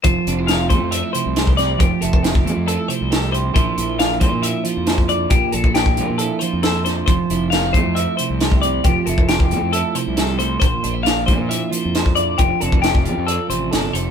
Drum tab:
HH |x-x-x-x-x-x-x-x-|x-x-x-x-x-x-x-x-|x-x-x-x-x-x-x-x-|x-x-x-x-x-x-x-x-|
SD |----o-------o-o-|----o-------o---|----o-------o---|----o-------o-o-|
BD |o-----o------o--|o--o-o----------|o-----o------o--|o--o-o----------|

HH |x-x-x-x-x-x-x-x-|x-x-x-x-x-x-x-x-|x-x-x-x-x-x-x-x-|x-x-x-x-x-x-x-x-|
SD |----o-------o---|----o-------o---|----o-------o---|----o-------o---|
BD |o-----o------o--|o--o-o----------|o-----o------o--|o--o-o----------|